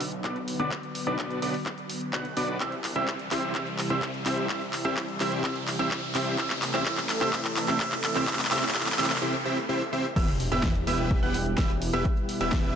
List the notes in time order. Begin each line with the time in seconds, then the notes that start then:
Already playing: B1 D3 F#3 B3 F#4 B4, riser
0.00 open hi-hat
0.12 closed hi-hat
0.24 B1 B3 D4 F#4 B4 D5 D6, kick, clap, closed hi-hat
0.36 closed hi-hat
0.48 open hi-hat
0.60 B1 B3 D4 F#4 B4 D5 D6, closed hi-hat
0.71 kick, clap, closed hi-hat
0.83 closed hi-hat
0.95 open hi-hat
1.07 B1 B3 D4 F#4 B4 D5 D6
1.19 kick, clap, closed hi-hat
1.30 closed hi-hat
1.42 B1 B3 D4 F#4 B4 D5 D6, open hi-hat
1.54 open hi-hat
1.66 kick, clap, closed hi-hat
1.78 closed hi-hat
1.90 open hi-hat
2.01 closed hi-hat
2.13 B1 B3 D4 F#4 B4 F#5 F#6, kick, clap, closed hi-hat
2.25 closed hi-hat
2.37 B1 B3 D4 F#4 B4 D5 D6, open hi-hat
2.60 C2 C3 E3 G3 C4 E4 G4 C5 E5 E6, kick, clap, closed hi-hat
2.72 closed hi-hat
2.84 clap, open hi-hat
2.96 C2 C4 E4 G4 C5 E5 E6, closed hi-hat
3.08 kick, clap, closed hi-hat
3.19 closed hi-hat
3.31 C2 C4 E4 G4 C5 E5 E6, clap, open hi-hat
3.43 closed hi-hat
3.55 C2 C4 E4 G4 C5 E5 E6, kick, clap, closed hi-hat
3.67 closed hi-hat
3.78 clap, open hi-hat
3.90 C2 C4 E4 G4 C5 E5 E6
4.02 kick, clap, closed hi-hat
4.14 closed hi-hat
4.26 C2 C4 E4 G4 C5 E5 E6, clap, open hi-hat
4.38 closed hi-hat
4.49 C2 C4 E4 G4 C5 E6, kick, clap, closed hi-hat
4.61 closed hi-hat
4.73 clap, open hi-hat
4.85 C2 C4 E4 G4 C5 E5 E6, closed hi-hat
4.97 kick, clap, closed hi-hat
5.08 closed hi-hat
5.20 C2 C4 E4 G4 C5 E5 E6, clap, open hi-hat
5.32 closed hi-hat
5.44 C2 C4 E4 E6, kick, clap, closed hi-hat
5.56 closed hi-hat
5.68 clap, open hi-hat
5.79 C2 C4 E4 G4 C5 E5 E6, closed hi-hat
5.91 kick, clap, closed hi-hat
6.03 closed hi-hat
6.15 C2 C4 E4 G4 C5 E5 E6, clap, open hi-hat
6.27 closed hi-hat
6.38 A1 E3 A3 C4 E4 G4 A4 C5 E5 E6, kick, clap, closed hi-hat
6.50 clap, closed hi-hat
6.62 clap, open hi-hat
6.74 A1 C4 E4 G4 C5 E5 E6, clap, closed hi-hat
6.86 A1 E4 E6, kick, clap, closed hi-hat
6.97 clap, closed hi-hat
7.09 clap, open hi-hat
7.21 A1 C4 E4 G4 C5 E5 E6, clap, closed hi-hat
7.33 A1 C4 E4 G4 E5 E6, kick, clap, closed hi-hat
7.45 clap, closed hi-hat
7.56 clap, open hi-hat
7.68 A1 C4 E4 G4 C5 E5 E6, clap, closed hi-hat
7.80 A1 C4 E4 G4 C5 E5 E6, kick, clap, closed hi-hat
7.92 clap, closed hi-hat
8.04 clap, open hi-hat
8.15 A1 C4 E4 G4 C5 E5 E6, clap
8.27 A1 C4 E4 C5 E5 E6, kick, clap, closed hi-hat, noise sweep
8.33 clap
8.39 clap, closed hi-hat
8.45 clap
8.51 A1 C4 E4 G4 C5 E5 E6, clap, open hi-hat
8.57 clap
8.63 clap, closed hi-hat
8.69 clap
8.75 A1 C4 E4 G4 C5 E5 E6, kick, clap, closed hi-hat
8.80 clap
8.86 clap, closed hi-hat
8.92 clap
8.98 A1 C4 E4 G4 C5 E5 E6, clap, open hi-hat
9.04 clap
9.10 clap, open hi-hat
9.16 clap
9.22 C4 E4 G4 C5 E5
9.45 C4 E4 G4 C5 E5
9.69 C4 E4 G4 C5 E5
9.93 C4 E4 G4 C5 E5
10.16 E1 B2 E3 G3 B3 E4 G4 B4 E5 E6, kick, closed hi-hat, crash, sub drop
10.28 closed hi-hat
10.40 open hi-hat
10.52 E1 B3 E4 G4 B4 E5 E6
10.63 kick, snare, closed hi-hat
10.75 closed hi-hat
10.87 E1 B3 E4 G4 B4 E5 E6, open hi-hat
11.11 kick, closed hi-hat
11.23 E1 B3 E4 G4 B4 F#5 F#6, closed hi-hat
11.34 open hi-hat
11.46 closed hi-hat
11.58 E1 B3 E4 G4 B4 E5 E6, kick, snare, closed hi-hat
11.70 closed hi-hat
11.82 open hi-hat
11.93 E1 B3 E4 G4 B4 E5 E6
12.05 F#5, kick, closed hi-hat
12.17 closed hi-hat
12.29 open hi-hat
12.41 E1 B3 E4 G4 B4 E5 E6, closed hi-hat
12.52 kick, snare, closed hi-hat
12.64 closed hi-hat